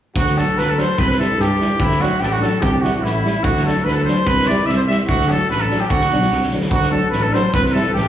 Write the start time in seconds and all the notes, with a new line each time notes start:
0.15 D2 F#4, kick
0.27 snare
0.36 F#3 D4 A4, snare
0.57 D2 B4, snare
0.70 A4
0.77 F#3 D4 C5, snare
0.97 C2 B4, kick
1.09 B4, snare
1.18 G3 E4 A4, snare
1.38 G2 G4, snare
1.60 G3 E4, snare
1.80 D2 E4, kick
1.92 snare
2.00 F#3 D4 F#4, snare
2.19 A1 G4 A4, snare
2.24 G4 A4
2.32 F#4
2.40 F#3 D4 A4, snare
2.45 A4
2.61 C2 G4, kick
2.72 G4
2.81 G3 E4 F#4, snare
2.95 F#4
3.00 A1 E4
3.05 snare
3.24 G3 E4, snare
3.42 D2 F#4, kick
3.57 snare
3.62 F#3 A4
3.66 D4, snare
3.84 D2 B4, snare
3.95 A4
4.05 F#3 D4 C5, snare
4.25 C2 B4, kick
4.39 snare
4.45 E4 D5
4.49 G3, snare
4.66 C2 E5, snare
4.76 C5
4.88 G3 E4 E5, snare
5.08 D2 F#4, kick
5.21 snare
5.28 F#3 D4 A4, snare
5.49 A1 B4, snare
5.60 A4
5.69 F#3 D4, snare
5.80 G4
5.88 D2 F#4, kick
6.01 snare
6.10 B1 F#3 D4, snare
6.21 snare
6.30 C2, snare
6.43 snare
6.51 D2 F#3 D4, snare
6.61 snare
6.70 D2 F#4, kick
6.83 snare
6.91 F#3 D4 A4
7.10 A1 B4, snare
7.22 A4
7.31 F#3 D4 C5, snare
7.53 C2 B4, kick
7.65 B4, snare
7.72 G3 E4 A4, snare
7.94 A1 G4, snare